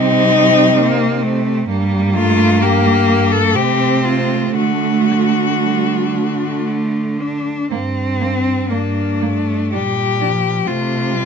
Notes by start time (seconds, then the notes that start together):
Already playing: C3 G3 C4 D#4
0.78 A#3
1.23 A3
1.69 G2 G3 A#3
2.15 A3 F4
2.62 A#3 G4
3.32 A4
3.55 C3 A3 C4 G4
4.05 F4
4.56 D3 A3 F#4
5.63 G3
6.17 A3
7.21 D4
7.71 G2 A#3 C4
8.21 A#3 C4
8.69 G2 A#3 D4
9.22 A3 A#3
9.72 A#2 G3 D4 G4
10.21 F3 D4
10.65 C3 A3 C4 F4
11.10 G3 C4